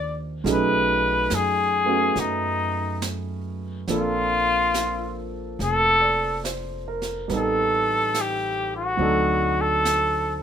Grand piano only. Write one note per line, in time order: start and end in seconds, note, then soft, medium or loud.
0.00 0.45 A#3 soft
0.00 0.45 C4 soft
0.00 0.45 D4 soft
0.00 0.44 D#4 soft
0.00 0.45 F4 soft
0.00 0.46 G4 soft
0.44 3.87 F#3 soft
0.44 1.84 A3 soft
0.44 1.85 C#4 soft
0.44 3.88 D#4 soft
0.44 3.88 G#4 soft
1.85 3.87 A3 soft
1.85 3.87 B3 soft
1.85 3.87 C#4 soft
1.85 3.88 F#4 soft
3.88 7.30 F3 soft
3.88 7.30 A#3 soft
3.88 7.29 C4 soft
3.88 7.30 D4 soft
3.88 7.31 A4 soft
6.01 6.61 D5 soft
6.44 7.11 C5 soft
6.88 7.47 A#4 soft
7.28 8.99 G3 soft
7.28 9.00 B3 soft
7.28 8.97 C4 soft
7.32 8.99 D#4 soft
7.32 9.01 A4 soft
8.97 10.43 F#3 soft
8.97 10.43 C4 soft
8.97 10.43 D4 soft
8.97 10.43 D#4 soft
9.02 10.43 A4 soft